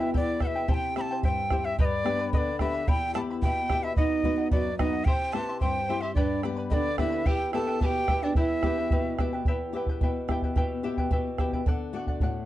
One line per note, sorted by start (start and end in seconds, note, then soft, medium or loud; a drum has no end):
0.00 0.66 E2 medium
0.00 0.13 B2 medium
0.00 0.38 E4 medium
0.00 0.13 E4 soft
0.00 0.14 B4 soft
0.00 0.10 E5 medium
0.00 0.14 G5 medium
0.14 0.41 B3 medium
0.14 0.40 E4 medium
0.14 0.41 B4 medium
0.14 0.41 D5 medium
0.14 0.40 E5 medium
0.14 0.41 G5 medium
0.14 bombo low medium
0.40 0.68 B2 soft
0.40 0.55 E4 medium
0.40 0.55 B4 medium
0.40 0.55 E5 medium
0.40 0.48 F#5 medium
0.40 0.54 G5 medium
0.40 bombo rim medium
0.40 bombo low medium
0.47 0.72 E5 medium
0.55 0.67 E4 soft
0.55 0.68 B4 soft
0.55 0.68 G5 medium
0.68 1.22 C3 medium
0.68 0.96 E4 medium
0.68 0.96 G4 medium
0.68 0.96 C5 medium
0.68 0.95 E5 medium
0.68 0.96 G5 medium
0.68 0.75 A5 loud
0.68 bombo low medium
0.74 0.97 G5 loud
0.96 1.40 C4 soft
0.96 1.40 E4 soft
0.96 1.10 E4 medium
0.96 1.40 G4 medium
0.96 1.11 C5 medium
0.96 1.10 E5 medium
0.96 1.10 G5 medium
0.96 1.02 B5 medium
0.96 bombo rim soft
1.01 1.22 A5 loud
1.11 1.23 E4 medium
1.11 1.24 C5 medium
1.11 1.24 G5 medium
1.23 1.77 G2 medium
1.23 1.51 E4 medium
1.23 1.51 C5 medium
1.23 1.50 E5 medium
1.23 1.66 G5 loud
1.23 1.52 G5 medium
1.23 bombo low medium
1.50 1.73 C4 soft
1.50 1.73 E4 soft
1.50 1.65 E4 medium
1.50 1.73 G4 medium
1.50 1.65 C5 medium
1.50 1.65 E5 medium
1.50 1.64 G5 medium
1.50 bombo rim medium
1.50 bombo low medium
1.65 1.79 E4 soft
1.65 1.79 C5 soft
1.65 1.79 E5 loud
1.65 1.78 G5 medium
1.78 2.32 G2 medium
1.78 2.06 G4 medium
1.78 2.05 B4 medium
1.78 2.05 D5 medium
1.78 1.86 D#5 loud
1.78 2.04 G5 medium
1.78 2.05 B5 medium
1.78 bombo low medium
1.85 2.30 D5 loud
2.04 2.49 B3 medium
2.04 2.49 D4 soft
2.04 2.50 G4 medium
2.04 2.19 B4 medium
2.04 2.19 D5 medium
2.04 2.19 G5 medium
2.04 2.18 B5 medium
2.04 bombo rim medium
2.19 2.33 B4 soft
2.19 2.33 D5 medium
2.19 2.33 B5 medium
2.33 2.86 D3 medium
2.33 2.60 B4 medium
2.33 2.60 D5 medium
2.33 2.38 D#5 medium
2.33 2.59 G5 medium
2.33 2.60 B5 medium
2.33 bombo low medium
2.37 2.59 D5 medium
2.59 2.82 B3 medium
2.59 2.83 D4 soft
2.59 2.83 G4 medium
2.59 2.74 B4 medium
2.59 2.73 D5 medium
2.59 2.90 E5 medium
2.59 2.74 G5 medium
2.59 2.73 B5 medium
2.59 bombo rim medium
2.59 bombo low medium
2.74 2.88 B4 soft
2.74 2.88 D5 soft
2.74 2.87 B5 soft
2.88 3.41 E2 medium
2.88 3.14 E4 medium
2.88 3.15 G4 medium
2.88 3.15 E5 medium
2.88 3.13 G5 medium
2.88 3.14 G5 loud
2.88 3.15 B5 medium
2.88 bombo low medium
3.14 3.59 B3 medium
3.14 3.29 E4 medium
3.14 3.59 E4 medium
3.14 3.60 G4 medium
3.14 3.29 E5 medium
3.14 3.29 G5 medium
3.14 3.21 A5 medium
3.14 3.29 B5 medium
3.14 bombo rim medium
3.30 3.43 E4 soft
3.30 3.44 E5 soft
3.30 3.43 B5 medium
3.42 3.96 B2 medium
3.42 3.71 E4 medium
3.42 3.71 E5 medium
3.42 3.85 G5 loud
3.42 3.71 G5 medium
3.42 3.71 B5 medium
3.42 bombo low medium
3.69 3.92 B3 medium
3.69 3.92 E4 soft
3.69 3.85 E4 medium
3.69 3.92 G4 medium
3.69 3.84 E5 medium
3.69 3.85 G5 medium
3.69 3.83 B5 medium
3.69 bombo rim medium
3.69 bombo low medium
3.83 3.97 E4 soft
3.83 3.96 E5 medium
3.83 3.98 E5 soft
3.83 3.98 B5 medium
3.96 4.51 B2 medium
3.96 4.48 D#4 medium
3.96 4.23 B4 medium
3.96 4.48 D#5 medium
3.96 4.24 D#5 medium
3.96 4.25 F#5 medium
3.96 bombo low medium
4.23 4.68 B3 medium
4.23 4.69 D#4 soft
4.23 4.69 F#4 medium
4.23 4.38 B4 medium
4.23 4.38 D#5 medium
4.23 4.36 F#5 medium
4.23 bombo low medium
4.38 4.51 D#5 soft
4.38 4.52 F#5 medium
4.51 5.05 F#2 medium
4.51 4.78 F#4 medium
4.51 4.78 B4 medium
4.51 4.77 D5 medium
4.51 4.79 D#5 medium
4.51 4.79 F#5 medium
4.51 bombo low medium
4.79 5.01 B3 soft
4.79 5.02 D#4 soft
4.79 5.08 D#4 medium
4.79 5.02 F#4 medium
4.79 4.93 B4 medium
4.79 5.06 D#5 medium
4.79 4.92 D#5 medium
4.79 4.92 F#5 medium
4.79 bombo rim medium
4.79 bombo low medium
4.93 5.07 D#5 soft
4.93 5.07 F#5 medium
5.05 5.60 C3 medium
5.05 5.33 E4 medium
5.05 5.34 G4 medium
5.05 5.36 C5 medium
5.05 5.33 C5 medium
5.05 5.34 E5 medium
5.05 5.34 G5 loud
5.05 5.34 C6 medium
5.05 bombo low medium
5.33 5.78 C4 medium
5.33 5.78 E4 soft
5.33 5.48 E4 medium
5.33 5.78 G4 medium
5.33 5.61 B4 medium
5.33 5.48 C5 medium
5.33 5.48 E5 medium
5.33 5.60 A5 medium
5.33 5.47 C6 medium
5.33 bombo rim medium
5.48 5.61 E4 soft
5.48 5.61 E5 soft
5.48 5.61 C6 soft
5.61 6.15 G2 medium
5.61 5.88 E4 medium
5.61 5.87 C5 medium
5.61 6.03 C5 medium
5.61 5.89 E5 medium
5.61 6.03 G5 medium
5.61 5.89 C6 medium
5.61 bombo low medium
5.89 6.11 C4 soft
5.89 6.03 E4 medium
5.89 6.12 E4 soft
5.89 6.12 G4 medium
5.89 6.03 C5 medium
5.89 6.02 E5 medium
5.89 6.01 C6 medium
6.01 6.17 E4 soft
6.01 6.15 G4 medium
6.01 6.14 E5 medium
6.01 6.17 E5 soft
6.01 6.16 C6 medium
6.15 6.70 G2 medium
6.15 6.42 D4 medium
6.15 6.44 G4 medium
6.15 6.42 B4 medium
6.15 6.41 D5 medium
6.15 6.43 D5 medium
6.15 6.42 G5 medium
6.15 6.43 B5 medium
6.15 bombo low medium
6.43 6.88 B3 medium
6.43 6.88 D4 soft
6.43 6.88 G4 medium
6.43 6.57 B4 medium
6.43 6.56 D5 medium
6.43 6.57 G5 medium
6.43 6.55 B5 medium
6.43 bombo rim medium
6.57 6.70 B4 soft
6.57 6.71 D5 soft
6.57 6.71 B5 medium
6.70 7.25 D3 medium
6.70 6.98 D4 medium
6.70 6.97 B4 medium
6.70 6.98 D5 medium
6.70 6.96 D5 medium
6.70 6.75 D#5 medium
6.70 6.97 G5 medium
6.70 6.99 B5 medium
6.70 bombo low medium
6.98 7.21 B3 soft
6.98 7.21 D4 soft
6.98 7.28 E4 medium
6.98 7.21 G4 medium
6.98 7.12 B4 medium
6.98 7.12 D5 medium
6.98 7.28 E5 medium
6.98 7.12 G5 medium
6.98 7.11 B5 medium
6.98 bombo rim medium
6.98 bombo low medium
7.12 7.25 B4 soft
7.12 7.26 D5 soft
7.12 7.26 B5 medium
7.26 7.79 E2 medium
7.26 7.52 E4 medium
7.26 7.53 G4 medium
7.26 7.53 B4 medium
7.26 7.52 E5 medium
7.26 7.53 G5 loud
7.26 7.53 G5 medium
7.26 bombo low medium
7.53 7.97 B3 medium
7.53 7.67 E4 medium
7.53 7.98 E4 soft
7.53 7.98 G4 medium
7.53 7.83 A4 medium
7.53 7.66 B4 medium
7.53 7.67 E5 medium
7.53 7.66 G5 medium
7.53 7.81 A5 medium
7.53 bombo rim medium
7.67 7.80 E4 soft
7.67 7.81 B4 medium
7.67 7.81 G5 medium
7.81 8.34 B2 medium
7.81 8.08 E4 medium
7.81 8.25 G4 medium
7.81 8.09 B4 medium
7.81 8.08 E5 medium
7.81 8.09 G5 medium
7.81 7.86 A5 medium
7.81 bombo low medium
7.85 8.25 G5 loud
8.08 8.30 B3 soft
8.08 8.31 E4 soft
8.08 8.23 E4 medium
8.08 8.31 G4 medium
8.08 8.23 B4 medium
8.08 8.23 E5 medium
8.08 8.22 G5 medium
8.08 bombo rim medium
8.08 bombo low medium
8.23 8.36 D4 medium
8.23 8.36 E4 soft
8.23 8.36 B4 soft
8.23 8.36 D5 medium
8.23 8.36 G5 medium
8.35 8.89 E2 medium
8.35 9.15 E4 medium
8.35 8.64 E4 medium
8.35 8.63 G4 medium
8.35 8.64 B4 medium
8.35 9.15 E5 loud
8.35 8.64 E5 medium
8.35 8.64 G5 medium
8.35 bombo low medium
8.63 9.07 B3 medium
8.63 9.07 E4 soft
8.63 8.78 E4 medium
8.63 9.07 G4 medium
8.63 8.78 B4 medium
8.63 8.78 E5 medium
8.63 8.77 G5 medium
8.63 bombo rim medium
8.63 bombo low medium
8.78 8.90 E4 soft
8.78 8.91 B4 soft
8.78 8.91 G5 medium
8.90 9.45 B2 medium
8.90 9.19 E4 medium
8.90 9.19 B4 medium
8.90 9.18 E5 medium
8.90 9.19 G5 medium
8.90 bombo low medium
9.19 9.41 B3 soft
9.19 9.33 E4 medium
9.19 9.41 E4 soft
9.19 9.41 G4 medium
9.19 9.33 B4 medium
9.19 9.32 E5 medium
9.19 9.32 G5 medium
9.19 bombo rim medium
9.19 bombo low medium
9.33 9.47 E4 soft
9.33 9.47 B4 medium
9.33 9.46 G5 medium
9.45 9.99 E2 medium
9.45 9.74 E4 medium
9.45 9.74 G4 medium
9.45 9.75 B4 medium
9.45 9.73 E5 medium
9.45 9.75 G5 medium
9.45 bombo low medium
9.73 10.17 B3 soft
9.73 10.17 E4 soft
9.73 9.88 E4 medium
9.73 10.17 G4 medium
9.73 9.88 B4 medium
9.73 9.88 E5 medium
9.73 9.88 G5 medium
9.86 10.02 G5 medium
9.86 bombo low medium
9.91 10.02 E4 soft
9.91 10.02 B4 medium
10.01 10.54 B2 medium
10.01 10.29 E4 medium
10.01 10.30 B4 medium
10.01 10.29 E5 medium
10.01 10.30 G5 medium
10.01 bombo low medium
10.28 10.72 B3 soft
10.28 10.72 E4 soft
10.28 10.43 E4 medium
10.28 10.73 G4 soft
10.28 10.43 B4 medium
10.28 10.43 E5 medium
10.28 10.42 G5 medium
10.28 bombo rim medium
10.28 bombo low medium
10.42 10.56 E4 soft
10.42 10.56 B4 medium
10.42 10.57 G5 medium
10.42 bombo low medium
10.56 11.09 B2 medium
10.56 10.84 E4 medium
10.56 10.84 G4 medium
10.56 10.84 B4 medium
10.56 10.83 E5 medium
10.56 10.84 G5 medium
10.56 bombo low medium
10.83 11.27 B3 medium
10.83 11.27 E4 soft
10.83 10.98 E4 medium
10.83 11.28 G4 medium
10.83 10.98 B4 medium
10.83 10.97 E5 medium
10.83 10.97 G5 medium
10.97 11.12 E4 medium
10.97 11.12 B4 medium
10.97 11.11 G5 medium
10.97 bombo low medium
11.11 11.64 B2 medium
11.11 11.39 E4 medium
11.11 11.39 B4 medium
11.11 11.38 E5 medium
11.11 11.39 G5 medium
11.11 bombo low medium
11.38 11.60 B3 soft
11.38 11.61 E4 soft
11.38 11.53 E4 medium
11.38 11.61 G4 medium
11.38 11.53 B4 medium
11.38 11.52 E5 medium
11.38 11.52 G5 medium
11.38 bombo rim medium
11.38 bombo low medium
11.52 11.67 E4 soft
11.52 11.67 B4 medium
11.52 11.66 G5 medium
11.52 bombo low soft
11.66 12.19 D3 medium
11.66 11.93 A4 medium
11.66 11.94 D5 medium
11.66 11.95 F#5 medium
11.66 bombo low medium
11.93 12.37 A3 medium
11.93 12.37 D4 soft
11.93 12.37 F#4 medium
11.93 12.07 A4 medium
11.93 12.08 D5 medium
11.93 12.07 F#5 medium
12.07 12.21 D5 medium
12.07 12.21 F#5 medium
12.07 bombo low medium
12.20 12.46 A2 medium
12.20 12.46 A4 medium
12.20 12.46 D5 medium
12.20 12.46 F#5 medium
12.20 bombo low medium